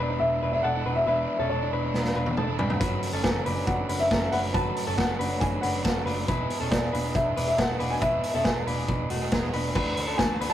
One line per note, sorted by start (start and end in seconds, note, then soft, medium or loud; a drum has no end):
0.00 0.17 E1 medium
0.00 0.10 E2 soft
0.00 0.10 E3 medium
0.00 0.10 G#3 medium
0.00 0.41 D4 medium
0.00 0.40 B4 medium
0.00 0.22 D5 medium
0.10 0.53 G#3 soft
0.10 0.53 B3 soft
0.10 0.53 D4 soft
0.10 0.52 E4 soft
0.19 0.38 E1 medium
0.19 0.50 E5 medium
0.42 0.60 E1 medium
0.42 0.64 D4 soft
0.42 0.64 B4 medium
0.52 0.75 E2 soft
0.52 0.75 E3 medium
0.52 0.75 G#3 medium
0.52 0.74 B3 medium
0.52 0.75 D4 medium
0.52 0.74 E4 medium
0.52 0.64 E5 medium
0.63 0.82 E1 medium
0.63 0.85 D4 medium
0.63 0.85 A4 medium
0.63 0.91 F#5 medium
0.75 1.05 E2 medium
0.75 1.06 E3 medium
0.75 1.06 G#3 medium
0.75 1.07 B3 medium
0.75 1.06 D4 medium
0.75 1.07 E4 medium
0.85 1.03 E1 medium
0.85 1.07 D4 medium
0.85 1.06 B4 medium
0.93 1.04 E5 medium
0.93 0.96 F#5 medium
1.06 1.25 E1 loud
1.06 1.40 E2 medium
1.06 1.40 E3 medium
1.06 1.40 G#3 medium
1.06 1.39 B3 medium
1.06 1.40 D4 medium
1.06 1.38 D4 medium
1.06 1.38 E4 medium
1.06 1.38 B4 medium
1.06 1.40 E5 medium
1.39 1.49 E1 medium
1.39 1.61 G#3 soft
1.39 1.61 B3 soft
1.39 1.51 C#4 medium
1.39 1.61 D4 soft
1.39 1.61 E4 soft
1.39 1.50 A4 medium
1.39 1.48 C#5 medium
1.49 1.68 E1 medium
1.49 1.72 D4 medium
1.49 1.73 A4 medium
1.49 1.90 C#5 medium
1.62 1.84 E2 soft
1.62 1.84 E3 soft
1.62 1.83 G#3 medium
1.62 1.82 B3 soft
1.62 1.83 D4 medium
1.62 1.81 E4 medium
1.72 1.90 E1 medium
1.72 2.14 D4 medium
1.72 2.14 B4 medium
1.82 2.25 G#3 soft
1.82 2.24 B3 soft
1.82 2.25 D4 soft
1.82 2.24 E4 medium
1.93 2.11 E1 medium
1.93 snare soft
2.05 snare soft
2.15 2.33 E1 medium
2.15 2.37 D4 soft
2.15 2.37 B4 medium
2.25 2.48 E2 medium
2.25 2.47 E3 medium
2.25 2.47 G#3 medium
2.25 2.47 B3 medium
2.25 2.47 D4 medium
2.25 2.46 E4 medium
2.25 high tom medium
2.37 2.55 E1 medium
2.37 2.59 D4 medium
2.37 2.59 A4 medium
2.37 mid tom medium
2.47 2.79 E2 medium
2.47 2.80 E3 medium
2.47 2.80 G#3 medium
2.47 2.81 B3 medium
2.47 2.80 D4 medium
2.47 2.80 E4 medium
2.59 2.77 E1 medium
2.59 2.81 D4 medium
2.59 2.79 B4 medium
2.59 floor tom medium
2.70 floor tom medium
2.80 2.99 F#1 medium
2.80 3.13 F#2 medium
2.80 3.13 C#3 medium
2.80 3.13 F#3 medium
2.80 3.13 A3 medium
2.80 3.13 C#4 medium
2.80 3.12 F#4 medium
2.80 3.11 B4 medium
2.80 kick loud
2.80 closed hi-hat medium
3.03 open hi-hat medium
3.13 3.22 F#1 medium
3.13 3.34 F#3 soft
3.13 3.34 A3 soft
3.13 3.34 C#4 soft
3.13 3.23 C#4 medium
3.13 3.34 F#4 soft
3.13 3.23 A4 medium
3.23 3.42 F#1 medium
3.23 3.46 C#4 medium
3.23 3.46 A4 medium
3.23 3.64 G#5 medium
3.23 kick loud
3.23 snare loud
3.23 closed hi-hat medium
3.35 3.57 F#2 soft
3.35 3.57 C#3 medium
3.35 3.57 F#3 soft
3.35 3.56 A3 medium
3.35 3.55 C#4 medium
3.35 3.55 F#4 medium
3.46 3.64 F#1 medium
3.46 3.87 D4 medium
3.46 3.87 B4 medium
3.46 open hi-hat medium
3.56 3.99 F#3 soft
3.56 3.99 A3 soft
3.56 3.98 C#4 soft
3.56 3.98 F#4 soft
3.67 3.85 F#1 medium
3.67 3.97 F#5 medium
3.67 kick medium
3.67 closed hi-hat medium
3.89 4.07 F#1 medium
3.89 4.11 D4 soft
3.89 4.11 B4 medium
3.89 open hi-hat medium
3.99 4.21 F#2 soft
3.99 4.21 C#3 medium
3.99 4.20 F#3 medium
3.99 4.20 A3 medium
3.99 4.20 C#4 medium
3.99 4.20 F#4 medium
3.99 4.33 E5 medium
4.11 4.29 F#1 medium
4.11 4.33 C#4 medium
4.11 4.33 A4 medium
4.11 kick medium
4.11 snare loud
4.11 closed hi-hat medium
4.21 4.52 F#2 medium
4.21 4.53 C#3 medium
4.21 4.53 F#3 medium
4.21 4.53 A3 medium
4.21 4.54 C#4 medium
4.21 4.54 F#4 medium
4.31 4.51 F#1 medium
4.31 4.55 D4 medium
4.31 4.54 B4 medium
4.31 4.36 F#5 medium
4.31 open hi-hat medium
4.54 4.72 F#1 medium
4.54 4.87 F#2 medium
4.54 4.87 C#3 medium
4.54 4.87 F#3 medium
4.54 4.87 A3 medium
4.54 4.86 C#4 medium
4.54 4.85 F#4 medium
4.54 4.86 F#4 medium
4.54 4.85 B4 medium
4.54 4.99 A5 medium
4.54 kick loud
4.54 closed hi-hat medium
4.76 open hi-hat medium
4.87 4.96 F#1 medium
4.87 5.08 F#3 soft
4.87 5.07 A3 soft
4.87 5.07 C#4 soft
4.87 4.98 C#4 medium
4.87 5.07 F#4 soft
4.87 4.97 A4 medium
4.98 5.16 F#1 medium
4.98 5.20 C#4 medium
4.98 5.19 A4 medium
4.98 5.38 F#5 medium
4.98 kick loud
4.98 snare loud
4.98 closed hi-hat medium
5.08 5.31 F#2 soft
5.08 5.31 C#3 medium
5.08 5.31 F#3 medium
5.08 5.30 A3 medium
5.08 5.29 C#4 medium
5.08 5.28 F#4 medium
5.19 5.37 F#1 medium
5.19 5.61 D4 medium
5.19 5.60 B4 medium
5.19 open hi-hat medium
5.30 5.73 F#3 soft
5.30 5.73 A3 soft
5.30 5.73 C#4 soft
5.30 5.72 F#4 soft
5.40 5.59 F#1 medium
5.40 5.61 G#5 medium
5.40 kick loud
5.40 closed hi-hat medium
5.61 5.81 F#1 medium
5.61 5.85 D4 soft
5.61 5.84 B4 medium
5.61 6.02 F#5 medium
5.61 open hi-hat medium
5.74 5.95 F#2 soft
5.74 5.95 C#3 medium
5.74 5.95 F#3 medium
5.74 5.95 A3 medium
5.74 5.94 C#4 medium
5.74 5.94 F#4 medium
5.84 6.03 F#1 medium
5.84 6.07 C#4 medium
5.84 6.06 A4 medium
5.84 kick loud
5.84 snare medium
5.84 closed hi-hat medium
5.95 6.27 F#2 medium
5.95 6.27 C#3 medium
5.95 6.27 F#3 medium
5.95 6.28 A3 medium
5.95 6.28 C#4 medium
5.95 6.28 F#4 medium
6.06 6.24 F#1 medium
6.06 6.29 D4 medium
6.06 6.27 B4 medium
6.06 open hi-hat medium
6.27 6.46 E1 medium
6.27 6.60 E2 medium
6.27 6.60 B2 medium
6.27 6.61 E3 medium
6.27 6.61 G#3 medium
6.27 6.60 B3 medium
6.27 6.59 E4 medium
6.27 6.59 G#4 medium
6.27 6.59 B4 medium
6.27 kick loud
6.27 closed hi-hat medium
6.50 open hi-hat medium
6.60 6.70 E1 medium
6.60 6.82 E3 soft
6.60 6.82 G#3 soft
6.60 6.81 B3 soft
6.60 6.72 C#4 medium
6.60 6.81 G#4 medium
6.60 6.70 A4 medium
6.70 6.90 E1 medium
6.70 6.94 E4 medium
6.70 6.93 A4 medium
6.70 7.16 D5 medium
6.70 kick loud
6.70 snare loud
6.70 closed hi-hat medium
6.82 7.05 E2 medium
6.82 7.05 B2 soft
6.82 7.04 E3 medium
6.82 7.04 G#3 medium
6.82 7.03 B3 medium
6.82 7.03 G#4 medium
6.93 7.11 E1 medium
6.93 7.34 D4 medium
6.93 7.34 B4 medium
6.93 open hi-hat medium
7.04 7.47 E3 soft
7.04 7.46 G#3 soft
7.04 7.46 B3 medium
7.04 7.45 G#4 soft
7.15 7.33 E1 medium
7.15 7.46 E5 medium
7.15 kick loud
7.15 closed hi-hat medium
7.37 7.55 E1 medium
7.37 7.59 D4 soft
7.37 7.58 B4 medium
7.37 open hi-hat medium
7.47 7.70 E2 medium
7.47 7.69 B2 soft
7.47 7.69 E3 medium
7.47 7.69 G#3 medium
7.47 7.69 B3 medium
7.47 7.68 G#4 medium
7.47 7.59 E5 medium
7.58 7.80 E4 medium
7.58 7.79 A4 medium
7.58 7.92 F#5 medium
7.58 kick loud
7.58 snare loud
7.58 closed hi-hat medium
7.69 7.99 E2 medium
7.69 8.00 B2 medium
7.69 8.00 E3 medium
7.69 8.00 G#3 medium
7.69 8.01 B3 medium
7.69 8.01 G#4 medium
7.79 7.98 E1 medium
7.79 8.02 D4 medium
7.79 8.01 B4 medium
7.79 open hi-hat medium
7.91 8.02 G#5 loud
8.01 8.20 E1 medium
8.01 8.34 E2 medium
8.01 8.34 B2 medium
8.01 8.34 E3 medium
8.01 8.34 G#3 medium
8.01 8.34 B3 medium
8.01 8.33 E4 medium
8.01 8.34 G#4 medium
8.01 8.33 B4 medium
8.01 8.33 E5 medium
8.01 kick loud
8.01 closed hi-hat medium
8.23 open hi-hat medium
8.34 8.43 E1 medium
8.34 8.55 E3 soft
8.34 8.55 G#3 soft
8.34 8.54 B3 soft
8.34 8.46 C#4 medium
8.34 8.54 G#4 soft
8.34 8.45 A4 medium
8.34 8.46 E5 medium
8.44 8.63 E1 medium
8.44 8.68 E4 medium
8.44 8.67 A4 medium
8.44 8.85 G#5 medium
8.44 kick loud
8.44 snare loud
8.44 closed hi-hat medium
8.55 8.78 E2 medium
8.55 8.78 B2 soft
8.55 8.78 E3 soft
8.55 8.77 G#3 medium
8.55 8.76 B3 medium
8.55 8.75 G#4 medium
8.67 8.85 E1 medium
8.67 9.09 D4 medium
8.67 9.08 B4 medium
8.67 open hi-hat medium
8.77 9.22 E3 soft
8.77 9.21 G#3 soft
8.77 9.21 B3 soft
8.77 9.20 G#4 soft
8.88 9.07 E1 medium
8.88 kick medium
8.88 closed hi-hat medium
9.10 9.28 E1 medium
9.10 9.33 A3 soft
9.10 9.32 F#4 medium
9.10 open hi-hat medium
9.22 9.42 E2 medium
9.22 9.42 B2 medium
9.22 9.42 E3 medium
9.22 9.42 G#3 medium
9.22 9.41 B3 medium
9.22 9.41 G#4 medium
9.31 9.50 E1 medium
9.31 9.54 B3 medium
9.31 9.53 G#4 medium
9.31 kick loud
9.31 snare loud
9.31 closed hi-hat medium
9.42 9.76 E2 medium
9.42 9.76 B2 medium
9.42 9.73 E3 medium
9.42 9.75 G#3 medium
9.42 9.75 B3 medium
9.42 9.75 G#4 medium
9.53 9.72 E1 loud
9.53 9.75 D4 medium
9.53 9.74 B4 medium
9.53 open hi-hat medium
9.75 9.93 D2 medium
9.75 10.08 E3 medium
9.75 10.08 A3 medium
9.75 10.07 D4 medium
9.75 10.06 F#4 medium
9.75 10.06 B4 medium
9.75 kick loud
9.75 crash medium
9.97 10.15 D2 medium
9.97 open hi-hat medium
10.07 10.39 A3 soft
10.07 10.19 C#4 medium
10.07 10.40 D4 soft
10.07 10.40 F#4 medium
10.07 10.18 A4 medium
10.18 10.37 D2 medium
10.18 10.40 D4 medium
10.18 10.41 A4 medium
10.18 10.49 G#5 loud
10.18 kick loud
10.18 snare loud
10.18 closed hi-hat medium
10.40 10.53 D2 medium
10.40 10.53 E3 soft
10.40 10.53 A3 medium
10.40 10.53 D4 medium
10.40 10.53 F#4 medium
10.40 10.53 B4 medium
10.40 open hi-hat medium
10.50 10.53 A5 loud